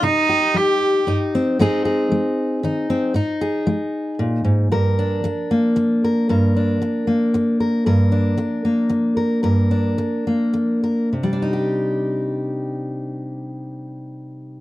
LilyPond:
<<
  \new Staff \with { instrumentName = "Cello" } { \time 3/4 \key c \minor \tempo 4 = 115 ees'4 g'4 r4 | r2. | r2. | r2. |
r2. | r2. | r2. | r2. |
r2. | }
  \new Staff \with { instrumentName = "Steel-string acoustic guitar" } { \time 3/4 \key c \minor << { <ees' g'>8 g'4. ees'8 c'8 | <aes c' ees' aes'>8 aes'4. ees'8 c'8 | ees'8 aes'2~ aes'8 | bes'8 d'4 bes4 bes'8 |
bes'8 d'4 bes4 bes'8 | bes'8 d'4 bes4 bes'8 | bes'8 d'4 bes4 bes'8 | <g d' ees' g'>2.~ |
<g d' ees' g'>2. | } \\ { c4 g4 g,4 | aes,4 aes4 ees4 | aes,4 aes4 bes,8 aes,8 | g,4 r2 |
g,4 r2 | g,4 r2 | g,4 r2 | c2.~ |
c2. | } >> }
>>